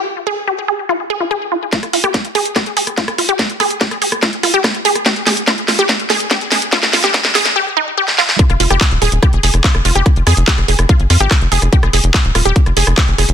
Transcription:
<<
  \new Staff \with { instrumentName = "Synth arpeggio sound" } { \time 4/4 \key ees \mixolydian \tempo 4 = 144 r8 aes'16 r16 g'16 r16 aes'16 r16 f'16 r16 aes'16 f'16 aes'16 r16 f'16 r16 | f'16 r16 f'16 g'16 r8 aes'16 r16 g'16 r16 aes'16 r16 f'16 r16 f'16 g'16 | r8 aes'16 r16 g'16 r16 aes'16 r16 f'16 r16 f'16 g'16 r8 aes'16 r16 | g'16 r16 aes'16 r16 f'16 r16 f'16 g'16 r8 aes'16 r16 g'16 r16 aes'16 r16 |
f'16 r16 f'16 g'16 r8 aes'16 r16 g'16 r16 ees'16 r16 g'16 r16 f'16 r16 | f'16 r16 f'16 g'16 r8 aes'16 r16 g'16 r16 aes'16 r16 f'16 r16 f'16 g'16 | r8 aes'16 r16 g'16 r16 aes'16 r16 f'16 r16 f'16 g'16 r8 aes'16 r16 | g'16 r16 aes'16 r16 f'16 r16 f'16 g'16 r8 aes'16 r16 g'16 r16 aes'16 r16 | }
  \new Staff \with { instrumentName = "Analog synth bass" } { \clef bass \time 4/4 \key ees \mixolydian r1 | r1 | r1 | r1 |
r1 | r16 f,,16 f,,16 f,,16 r16 ees,,16 ees,,16 ees,,16 r16 f,,16 f,,16 f,,16 r16 f,,16 f,,16 f,,16 | r16 f,,16 f,16 f,,16 r16 f,,16 f,,16 f,,16 r16 g,,16 f,16 aes,,16 r16 f,,16 f,,16 f,,16 | r16 f,,16 f,,16 f,,16 r16 ees,,16 ees,,16 ees,,16 r16 f,,16 f,,16 f,,16 r16 f,,16 f,,16 f,,16 | }
  \new DrumStaff \with { instrumentName = "Drums" } \drummode { \time 4/4 r4 r4 r4 r4 | <hh bd sn>16 <hh ss>16 hho16 <hh ss>16 <hh bd sn>16 hh16 <hho ss>16 hh16 <hh bd ss sn>16 hh16 hho16 <hh ss>16 <hh bd sn>16 <hh ss>16 hho16 hh16 | <hh bd ss sn>16 hh16 <hho ss>16 hh16 <hh bd sn>16 <hh ss>16 hho16 <hh ss>16 <hh bd sn>16 hh16 <hho ss>16 hh16 <hh bd ss sn>16 hh16 hho16 <hh ss>16 | <hh bd sn>16 hh16 <hho sn>16 hh16 <hh bd sn>16 hh16 <hho sn>16 hh16 <hh bd sn>16 hh16 <hho sn>16 hh16 <hh bd sn>16 hh16 <hho sn>16 hh16 |
<hh bd sn>16 <hh sn>16 <hho sn>16 <hh sn>16 <hh bd sn>16 <hh sn>16 <hho sn>16 <hh sn>16 r4 r16 sn16 sn16 sn16 | <hh bd>16 <hh ss>16 hho16 <hh ss>16 <hc hh bd>16 hh16 <hho ss>16 hh16 <hh bd ss>16 hh16 hho16 <hh ss>16 <hc hh bd>16 <hh ss>16 hho16 hh16 | <hh bd ss>16 hh16 <hho ss>16 hh16 <hc hh bd>16 <hh ss>16 hho16 <hh ss>16 <hh bd>16 hh16 <hho ss>16 hh16 <hc hh bd ss>16 hh16 hho16 <hh ss>16 | <hh bd>16 <hh ss>16 hho16 hh16 <hc hh bd ss>16 hh16 <hho ss>16 hh16 <hh bd>16 <hh ss>16 hho16 <hh ss>16 <hc hh bd>16 hh16 <hho ss>16 hh16 | }
>>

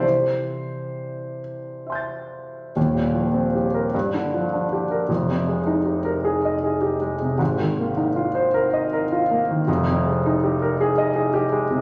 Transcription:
\new Staff \with { instrumentName = "Grand piano" } { \time 6/8 \key c \major \tempo 4. = 52 << { c''4. r8 <e'' c''' g''' a'''>4 | \key f \dorian r2. | r2. | r2. |
r2. | } \\ { <c e c' g' a'>2. | <ees,, ees,>16 bes,16 f16 c'16 g'16 bes'16 g,16 d16 f16 d'16 g'16 bes'16 | <f,, f,>16 c16 aes16 ees'16 g'16 bes'16 aes'16 ees''16 aes'16 g'16 aes16 c16 | <aes,, aes,>16 ees16 bes16 ees'16 f'16 c''16 bes'16 ees''16 bes'16 f'16 bes16 ees16 |
<f,, f,>16 c16 aes16 ees'16 g'16 bes'16 aes'16 ees''16 aes'16 g'16 aes16 c16 | } >> }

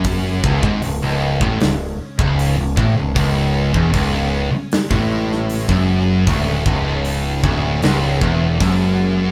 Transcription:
<<
  \new Staff \with { instrumentName = "String machine" } { \clef bass \time 4/4 \key cis \phrygian \tempo 4 = 77 <cis gis cis'>1~ | <cis gis cis'>1~ | <cis gis cis'>1 | }
  \new Staff \with { instrumentName = "Distorted electric guitar" } { \clef bass \time 4/4 \key cis \phrygian fis,8 cis,16 gis,16 cis,16 cis,8 a,16 cis,8 r16 cis,8 cis,16 a,16 cis,16 | cis,8. e,16 cis,8. r8 a,4 fis,8. | d,8 cis,4 d,8 cis,8 e,8 fis,4 | }
  \new Staff \with { instrumentName = "Distorted electric guitar" } { \clef bass \time 4/4 \key cis \phrygian fis,8 cis,16 gis,16 cis,16 cis,8 a,16 cis,8 r16 cis,8 cis,16 a,16 cis,16 | cis,8. e,16 cis,8. r8 a,4 fis,8. | d,8 cis,4 d,8 cis,8 e,8 fis,4 | }
  \new Staff \with { instrumentName = "Overdriven electric guitar" } { \clef bass \time 4/4 \key cis \phrygian fis,8 cis,16 gis,16 cis,16 cis,8 a,16 cis,8 r16 cis,8 cis,16 a,16 cis,16 | cis,8. e,16 cis,8. r8 a,4 fis,8. | d,8 cis,4 d,8 cis,8 e,8 fis,4 | }
  \new Staff \with { instrumentName = "Picked electric bass" } { \clef bass \time 4/4 \key cis \phrygian fis,,8 cis,,16 gis,,16 cis,,16 cis,,8 a,,16 cis,,8 r16 cis,,8 cis,,16 a,,16 cis,,16 | cis,,8. e,,16 cis,,8. r8 a,,4 fis,,8. | d,,8 cis,,4 d,,8 cis,,8 e,,8 fis,,4 | }
  \new DrumStaff \with { instrumentName = "Drums" } \drummode { \time 4/4 <hho bd>8 bd16 bd16 hho8. bd16 <hho sn>8. bd16 hho8 bd8 | <hho bd>8. bd16 <hho bd>4 <hho sn>16 bd8 sn16 hho16 bd8. | <hho bd>8 bd8 hho8 bd8 <hho sn>8 bd8 <hho bd>4 | }
>>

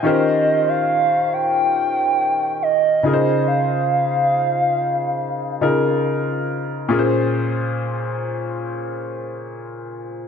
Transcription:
<<
  \new Staff \with { instrumentName = "Soft synth lead" } { \time 4/4 \key bes \dorian \tempo 4 = 70 ees''8. f''8. g''4. ees''4 | f''2. r4 | r1 | }
  \new Staff \with { instrumentName = "Grand piano" } { \time 4/4 \key bes \dorian <ees des' f' g' bes' c''>2.~ <ees des' f' g' bes' c''>8 <des ees' f' aes' bes' c''>8~ | <des ees' f' aes' bes' c''>2~ <des ees' f' aes' bes' c''>8 <des ees' f' aes' bes'>4. | <bes, des' f' aes' bes' c''>1 | }
>>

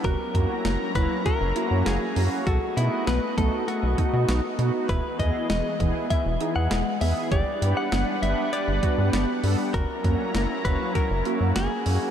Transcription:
<<
  \new Staff \with { instrumentName = "Clean electric guitar" } { \time 4/4 \key fis \dorian \tempo 4 = 99 ais'4. b'8 ais'4 gis'4 | fis'8 e'8 b'8 a'8 fis'4. r8 | b'8 dis''8 dis''4 e''8. fis''8. e''8 | d''8. fis''8. e''8 d''4 r4 |
ais'4. b'8 ais'4 gis'4 | }
  \new Staff \with { instrumentName = "Analog polysynth" } { \time 4/4 \key fis \dorian r8 <ais cis' fis'>8 r8 <ais cis' e'>8 r8 <ais cis' fis'>16 <ais cis' fis'>8 r16 <ais cis' fis'>16 <ais cis' fis'>16 | r8 <b dis' fis'>8 r8 <b dis' fis'>8 r8 <b dis' fis'>16 <b dis' fis'>8 r16 <b dis' fis'>16 <b dis' fis'>16 | r8 <b e' gis'>8 r8 <b e' gis'>8 r8 <b e' gis'>16 <b e' gis'>8 r16 <b e' gis'>16 <b e' gis'>16 | r8 <b d' g'>8 r8 <b d' g'>8 r8 <b d' fis'>16 <b d' g'>8 r16 <b d' a'>16 <b d' g'>16 |
r8 <ais cis' fis'>8 r8 <ais cis' fis'>8 r8 <ais cis' fis'>16 <ais cis' fis'>8 r16 <ais cis' fis'>16 <ais cis' fis'>16 | }
  \new Staff \with { instrumentName = "Analog synth pad" } { \time 4/4 \key fis \dorian <fis cis' e' ais''>1 | <a b dis''>1 | <e b gis'>1 | <g d' b' fis''>1 |
<fis cis' e' ais''>1 | }
  \new Staff \with { instrumentName = "Synth pluck" } { \time 4/4 \key fis \dorian fis'8 r8 ais8 fis8 fis'8 e'8 ais8 r8 | a'8 r8 b8 a8 a'8 dis'8 b8 r8 | e'8 r8 gis8 e8 e'8 dis'8 gis8 r8 | g'8 r8 b8 g8 g'8 fis'8 b8 r8 |
fis'8 r8 ais8 fis8 fis'8 e'8 ais8 r8 | }
  \new Staff \with { instrumentName = "Analog synth bass" } { \clef bass \time 4/4 \key fis \dorian fis,,16 r16 fis,16 r16 fis,,16 r16 fis,,16 r8 fis,,16 r16 fis,16 fis,,16 r16 fis,16 r16 | b,,16 r16 b,16 r16 b,,16 r16 b,,16 r8 b,,16 r16 b,16 b,,16 r16 b,16 r16 | e,,16 r16 e,16 r16 e,,16 r16 e,,16 r8 e,,16 r16 e,16 e,,16 r16 e,16 r16 | g,,16 r16 g,16 r16 g,,16 r16 g,,16 r8 g,,16 r16 g,16 g,,16 r16 g,16 r16 |
fis,,16 r16 fis,16 r16 fis,,16 r16 fis,,16 r8 fis,,16 r16 fis,16 fis,,16 r16 fis,16 r16 | }
  \new DrumStaff \with { instrumentName = "Drums" } \drummode { \time 4/4 <hh bd>8 <hh bd>8 <hh sn>8 <hh bd>8 <hh bd>8 hh8 <hh sn>8 hho8 | <hh bd>8 hh8 <hh sn>8 <hh bd>8 hh8 <hh bd>8 <hh sn>8 hh8 | <hh bd>8 <hh bd>8 <hh sn>8 <hh bd>8 <hh bd>8 hh8 <hh sn>8 hho8 | <hh bd>8 hh8 <hh sn>8 hh8 hh8 <hh bd>8 <hh sn>8 hho8 |
<hh bd>8 <hh bd>8 <hh sn>8 <hh bd>8 <hh bd>8 hh8 <hh sn>8 hho8 | }
>>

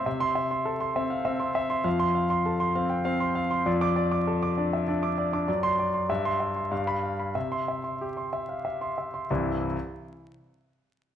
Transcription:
<<
  \new Staff \with { instrumentName = "Grand piano" } { \time 3/4 \key c \major \tempo 4 = 98 << { r16 c'''8 r2 r16 | r16 c'''8 r2 r16 | r16 d'''8 r2 r16 | r16 c'''8 r8 c'''8 r8 b''8 r16 |
r16 c'''8 r2 r16 | <c, g, e g c' e'>8 r2 r8 | } \\ { e''8 e''16 c'''16 a'16 c'''16 e''16 f''16 e''16 c'''16 e''16 c'''16 | f''8 f''16 c'''16 a'16 c'''16 f''16 g''16 f''16 c'''16 f''16 c'''16 | d''8 d''16 d'''16 a'16 d'''16 d''16 e''16 d''16 d'''16 d''16 d'''16 | d''8 d''16 c'''16 e''8 e''16 c'''16 f''8 f''16 b''16 |
e''8 e''16 c'''16 g'16 c'''16 e''16 f''16 e''16 c'''16 e''16 c'''16 | r2. | } >> }
  \new Staff \with { instrumentName = "Grand piano" } { \clef bass \time 3/4 \key c \major c4. c'8 c'8 r8 | f,4. c'8 c'8 r8 | f,4. d'8 d'8 r16 d'16 | fis,4 g,4 g,4 |
c2. | r2. | }
>>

